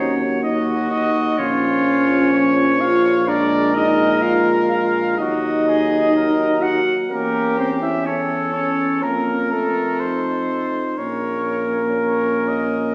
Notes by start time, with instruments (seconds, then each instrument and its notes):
Already playing: tuba D#2, euphonium F#3, french horn C#4, trumpet D#4 C#5
0.43 french horn D#4, trumpet F#4 D#5
0.91 french horn D#4, trumpet D#5
1.38 tuba A#1, euphonium F3, french horn C#4, trumpet F4 C#5
2.34 trumpet C#5
2.81 french horn F4, trumpet F5
3.27 euphonium G#3, french horn D4, trumpet A#4 D5
3.75 french horn D#4, trumpet D#5
4.22 french horn F4, trumpet F5
4.71 french horn F4, trumpet F5
5.18 tuba D#2, euphonium F#3, french horn D#4, trumpet F#4 D#5
5.68 trumpet G#4
6.16 trumpet A#4
6.61 french horn F#4, trumpet F#5
7.09 tuba E2, french horn A#3, euphonium C#4, trumpet G4 A#4
7.58 french horn C4, trumpet C5
7.82 french horn E4, trumpet E5
8.06 french horn C#4, trumpet A4 C#5
8.54 french horn C#4, trumpet C#5
9.02 tuba F2, french horn A#3, trumpet A#4
9.52 french horn A3, trumpet A4
10.00 euphonium D#4, trumpet C5
10.97 tuba A#1, french horn A#3, euphonium C#4, trumpet A#4 C#5
11.98 trumpet C#5
12.48 trumpet D#5